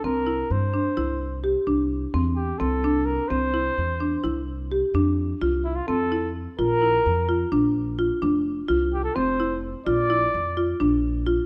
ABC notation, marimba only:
X:1
M:7/8
L:1/8
Q:1/4=128
K:F
V:1 name="Marimba"
C E2 D E2 G | D2 C2 C D2 | C E2 D E2 G | D2 F2 C E2 |
F E2 F D2 F | D2 F2 C E2 | F E2 F D2 F |]